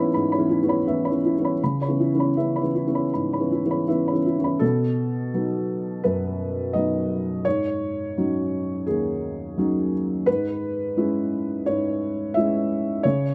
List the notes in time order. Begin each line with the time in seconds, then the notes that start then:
Already playing: G#2 E3 B3 C#4 E4 C#5 E5 B5
0.14 G#2 B5
0.32 C#5 B5
0.38 E3 B3 C#4
0.49 E4
0.63 E3 B3 C#4
0.69 C#5 B5
0.87 E3 B3 C#4 E5
1.05 C#5 B5
1.11 E3 B3 C#4
1.25 E4
1.39 E3 B3 C#4
1.45 C#5 B5
1.64 C#3 B5
1.81 C#5 B5
1.88 E3 B3 C#4
2.00 E4
2.15 E3 B3 C#4
2.19 C#5 B5
2.37 E3 B3 C#4 E5
2.56 C#5 B5
2.61 E3 B3 C#4
2.75 E4
2.87 E3 B3 C#4
2.94 C#5 B5
3.14 G#2 B5
3.33 C#5 B5
3.39 E3 B3 C#4
3.52 E4
3.65 E3 B3 C#4
3.70 C#5 B5
3.88 E3 B3 C#4 E5
4.07 C#5 B5
4.13 E3 B3 C#4
4.26 E4
4.38 E3 B3 C#4
4.44 C#5 B5
4.59 B2 A4
5.34 F#3 B3 D#4
6.04 F#2 B4
6.73 F#3 B3 D#4 D#5
7.45 G#2 C#5
8.17 F#3 C#4 D#4
8.87 D#2 G#4
9.58 F#3 C#4 D#4
10.26 G#2 B4
10.97 G#3 C#4 E4
11.66 G#2 C#5
12.34 G#3 C#4 E4 E5
13.03 C#3 C#5